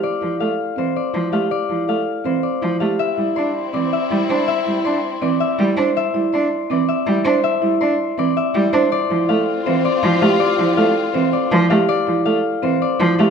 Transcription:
<<
  \new Staff \with { instrumentName = "Harp" } { \time 4/4 \key d \minor \tempo 4 = 162 <c'' d'' f'' c'''>4 f''4 c''8 d''4 f''8 | d''4 f''4 c''8 d''4 f''8 | e''4 c'''4 d''8 e''4 c'''8 | e''4 c'''4 d''8 e''4 c'''8 |
e''4 c'''4 d''8 e''4 c'''8 | e''4 c'''4 d''8 e''4 c'''8 | d''4 f''4 c''8 d''4 f''8 | d''4 f''4 c''8 d''4 f''8 |
d''4 f''4 c''8 d''4 f''8 | }
  \new Staff \with { instrumentName = "Marimba" } { \time 4/4 \key d \minor r8 e'8 a'8 r8 c'8 r8 e'8 g'8 | r8 e'8 a'8 r8 c'8 r8 e'8 g'8 | r8 e'8 d''8 r8 c'8 r8 e'8 c''8 | r8 e'8 d''8 r8 c'8 r8 e'8 c''8 |
r8 e'8 d''8 r8 c'8 r8 e'8 c''8 | r8 e'8 d''8 r8 c'8 r8 e'8 c''8 | r8 e'8 a'8 r8 c'8 r8 e'8 g'8 | r8 e'8 a'8 r8 c'8 r8 e'8 g'8 |
r8 e'8 a'8 r8 c'8 r8 e'8 g'8 | }
  \new Staff \with { instrumentName = "Violin section" } { \time 4/4 \key d \minor r1 | r1 | <c' e'>1~ | <c' e'>2.~ <c' e'>8 r8 |
r1 | r1 | <c' f'>1~ | <c' f'>2.~ <c' f'>8 r8 |
r1 | }
  \new Staff \with { instrumentName = "Cello" } { \clef bass \time 4/4 \key d \minor r8 f8 a8 r8 e8 r8 f8 a8 | r8 f8 a8 r8 e8 r8 f8 a8 | r8 g8 d'8 r8 e8 r8 g8 d'8 | r8 g8 d'8 r8 e8 r8 g8 d'8 |
r8 g8 d'8 r8 e8 r8 g8 d'8 | r8 g8 d'8 r8 e8 r8 g8 d'8 | r8 f8 a8 r8 e8 r8 f8 a8 | r8 f8 a8 r8 e8 r8 f8 a8 |
r8 f8 a8 r8 e8 r8 f8 a8 | }
>>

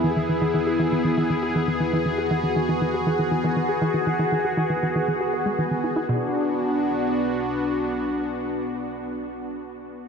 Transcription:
<<
  \new Staff \with { instrumentName = "Analog synth pad" } { \time 4/4 \key b \dorian \tempo 4 = 119 << { <b gis'>1~ | <b gis'>1~ | <b gis'>1 | <b d' fis'>1~ |
<b d' fis'>1 | } \\ { e'1 | fis'1~ | fis'1 | r1 |
r1 | } >> }
  \new Staff \with { instrumentName = "Synth arpeggio sound" } { \clef bass \time 4/4 \key b \dorian e16 e16 e16 e16 e16 gis'16 e16 e16 e16 e16 e16 gis'16 e16 e16 e16 e16 | e16 gis'16 e16 e16 e16 e16 e16 gis'16 e16 e16 e16 e16 e16 gis'16 e16 e16 | e16 e16 e16 gis'16 e16 e16 e16 e16 e16 gis'16 b'16 gis16 e16 e16 e'16 e'16 | b,8 r2. r8 |
r1 | }
  \new Staff \with { instrumentName = "Synth drone" } { \clef bass \time 4/4 \key b \dorian e,1~ | e,1~ | e,1 | b,,2. r4 |
r1 | }
>>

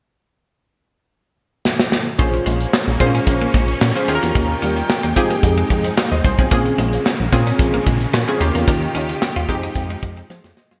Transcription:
<<
  \new Staff \with { instrumentName = "Analog polysynth" } { \time 4/4 \key bes \dorian \tempo 4 = 111 << { r1 | r1 | r2. f''16 <c'' ees''>16 <aes' c''>16 <f' aes'>16~ | <f' aes'>16 r2. r8. |
r2. <aes' c''>8 <c'' ees''>16 <aes' c''>16 | } \\ { r1 | <des' f' aes' c''>4 r8 <c' des' f' aes' c''>4~ <c' des' f' aes' c''>16 r8 <des' f' aes' c''>16 <des' f' g' aes' bes'>8~ | <des' f' g' aes' bes'>4 r8 <c' ees' g' aes'>4. r4 | <c' des' f' aes'>4 r8 <c' des' f' aes'>4~ <c' des' f' aes'>16 r8 <c' des' f' aes'>16 <bes des' f' g'>8~ |
<bes des' f' g'>4 r8 <aes c' ees' g'>4. r4 | } >> }
  \new Staff \with { instrumentName = "Clean electric guitar" } { \time 4/4 \key bes \dorian r1 | bes16 r16 aes16 r8. bes16 des'16 r16 bes16 aes16 r16 des'16 r8 bes16 | bes16 r16 g16 r8 bes16 r16 bes16 r16 aes16 r16 c'16 bes16 r8 c'16 | bes16 r16 aes16 r8. bes16 des'16 r16 bes16 aes16 r16 des'16 r8 bes16 |
bes16 r16 des'16 r8 f'16 r16 ees'16 r16 ees'16 r16 c'16 ees'16 r8 f'16 | }
  \new Staff \with { instrumentName = "String section" } { \time 4/4 \key bes \dorian r1 | <aes bes des'>2.~ <aes bes des'>8 <ees f' g''>8~ | <ees f' g''>4. <f aes ees'>2~ <f aes ees'>8 | <des aes bes>2.~ <des aes bes>8 <ees f' g'>8~ |
<ees f' g'>4. <f aes ees'>2~ <f aes ees'>8 | }
  \new Staff \with { instrumentName = "Analog synth bass" } { \clef bass \time 4/4 \key bes \dorian r1 | bes,,8 bes,,8 r16 bes,,16 bes,8 bes,,8 bes,,8 bes,16 r16 ees,16 e,16 | ees,8 ees,8 r16 ees,16 f8 f,8 f,8 r16 ees,16 c,16 ces,16 | bes,,8 bes,,8 r16 bes,,16 bes,8 bes,,8 bes,,8 bes,16 r16 ees,16 e,16 |
ees,8 ees,8 r16 ees,16 f,8 f,8 f,8 f16 f,16 r16 ges,16 | }
  \new DrumStaff \with { instrumentName = "Drums" } \drummode { \time 4/4 r4 r4 r4 sn16 sn16 sn8 | <hh bd>16 hh16 hh16 hh16 <hc sn>16 hh16 <hh bd>16 hh16 <hh bd>8 <hh bd>16 hh16 <hc sn>8 hh16 hh16 | <hh bd>8 hh16 hh16 <hc sn>16 hh16 <hh bd>16 hh16 <hh bd>16 hh16 <hh bd>16 hh16 <hc sn>8 <hh bd>16 <hh bd>16 | <hh bd>16 hh16 hh16 hh16 <hc sn>8 <hh bd>16 hh16 <hh bd>8 <hh bd>16 hh16 <hc sn>8 hh16 hh16 |
<hh bd>16 hh16 hh16 hh16 <hc sn>16 hh16 <hh bd>16 hh16 <hh bd>8 <hh bd>16 hh16 sn16 sn16 sn16 sn16 | }
>>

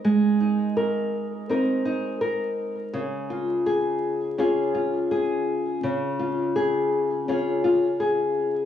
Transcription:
\new Staff \with { instrumentName = "Nylon-string guitar" } { \time 4/4 \key des \lydian \tempo 4 = 83 <aes c' ees' bes'>8 ees'8 bes'4 <c' ees' bes'>8 ees'8 bes'4 | des8 f'8 aes'4 <des' f' aes'>8 f'8 aes'4 | des8 f'8 aes'4 <des' f' aes'>8 f'8 aes'4 | }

